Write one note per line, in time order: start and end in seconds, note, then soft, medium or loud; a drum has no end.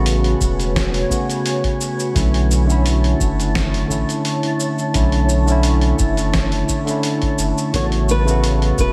0.00 0.35 A1 medium
0.00 1.09 C#3 medium
0.00 1.10 A3 medium
0.00 1.11 B3 medium
0.00 1.12 F#4 medium
0.00 2.11 F#4 medium
0.00 2.12 B4 medium
0.00 8.93 C#5 medium
0.00 2.12 G#5 medium
0.06 open hi-hat medium
0.06 cabasa soft
0.24 open hi-hat soft
0.41 1.05 E1 loud
0.41 kick loud
0.41 cabasa medium
0.60 open hi-hat soft
0.60 cabasa soft
0.76 kick loud
0.76 snare medium
0.76 open hi-hat medium
0.76 cabasa soft
0.94 open hi-hat soft
1.09 1.24 C#3 medium
1.09 1.25 A3 medium
1.09 1.25 B3 medium
1.09 1.26 F#4 medium
1.09 kick medium
1.09 cabasa medium
1.30 open hi-hat soft
1.30 cabasa soft
1.46 open hi-hat medium
1.46 cabasa soft
1.64 kick medium
1.64 open hi-hat soft
1.81 cabasa medium
2.00 cabasa soft
2.14 3.14 B1 loud
2.14 2.64 D3 medium
2.14 2.64 A3 medium
2.14 2.65 C#4 medium
2.14 7.70 E4 medium
2.14 2.65 E4 medium
2.14 7.70 A5 medium
2.14 kick loud
2.14 open hi-hat medium
2.14 cabasa soft
2.34 open hi-hat soft
2.51 cabasa medium
2.65 3.84 D3 medium
2.65 3.85 A3 medium
2.70 3.86 C#4 medium
2.70 3.87 E4 loud
2.70 cabasa soft
2.86 open hi-hat medium
2.86 cabasa soft
3.04 open hi-hat soft
3.20 3.84 F#1 loud
3.20 kick loud
3.20 cabasa medium
3.40 open hi-hat soft
3.40 cabasa soft
3.55 kick loud
3.55 snare medium
3.55 open hi-hat medium
3.55 cabasa soft
3.74 open hi-hat soft
3.88 4.04 A1 medium
3.88 4.04 D3 medium
3.88 4.04 A3 medium
3.88 4.05 C#4 medium
3.88 4.05 E4 medium
3.88 kick medium
3.88 cabasa medium
4.09 open hi-hat soft
4.09 cabasa soft
4.25 open hi-hat medium
4.25 cabasa soft
4.43 open hi-hat soft
4.60 cabasa medium
4.78 cabasa soft
4.93 5.94 B1 loud
4.93 5.43 D3 medium
4.93 5.43 A3 medium
4.93 5.44 C#4 medium
4.93 5.44 E4 medium
4.93 kick loud
4.93 open hi-hat medium
4.93 cabasa soft
5.12 open hi-hat soft
5.29 cabasa medium
5.45 6.64 D3 medium
5.45 6.65 A3 medium
5.45 cabasa soft
5.50 6.66 C#4 medium
5.50 6.67 E4 loud
5.63 open hi-hat medium
5.63 cabasa soft
5.81 open hi-hat soft
5.99 6.63 F#1 medium
5.99 kick loud
5.99 cabasa medium
6.17 open hi-hat soft
6.17 cabasa soft
6.34 kick loud
6.34 snare medium
6.34 open hi-hat medium
6.34 cabasa soft
6.52 open hi-hat soft
6.69 kick medium
6.69 cabasa medium
6.85 7.68 D3 medium
6.85 7.69 A3 medium
6.85 open hi-hat soft
6.85 cabasa soft
6.89 7.70 C#4 medium
6.89 7.71 E4 medium
7.03 open hi-hat medium
7.03 cabasa soft
7.22 kick medium
7.22 open hi-hat soft
7.38 7.53 F#1 medium
7.38 cabasa medium
7.58 cabasa soft
7.73 8.72 A1 loud
7.73 8.22 C#3 medium
7.73 8.23 A3 medium
7.73 8.23 B3 medium
7.73 8.93 F#4 medium
7.73 8.23 F#4 medium
7.73 8.93 B4 medium
7.73 7.85 C#5 loud
7.73 8.93 A5 medium
7.73 kick loud
7.73 open hi-hat medium
7.73 cabasa soft
7.92 open hi-hat soft
8.09 8.76 B4 loud
8.09 cabasa medium
8.25 8.93 C#3 medium
8.25 8.93 A3 medium
8.25 cabasa soft
8.29 8.93 B3 medium
8.29 8.93 F#4 loud
8.44 open hi-hat medium
8.44 cabasa soft
8.62 open hi-hat soft
8.78 8.93 E1 medium
8.78 8.93 B4 loud
8.78 kick loud
8.78 cabasa medium